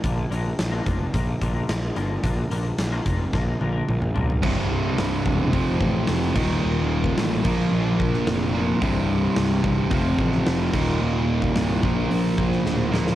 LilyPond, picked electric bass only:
\new Staff \with { instrumentName = "Picked electric bass" } { \clef bass \time 4/4 \key bes \lydian \tempo 4 = 109 bes,,8 bes,,8 bes,,8 f,,8 bes,,8 bes,,8 bes,,8 g,,8 | bes,,8 bes,,8 bes,,8 f,,8 bes,,8 bes,,8 bes,,8 b,,8 | c,,4 c,,8 e,,8 f,,8 a,,8 f,,8 ees,,8 | ees,,4 a,,8 bes,,8 bes,,4 f,,4 |
c,,4 c,,8 c,,8 f,,8 a,,8 f,,8 ees,,8 | ees,,4 c,,8 bes,,8 bes,,4 d,,4 | }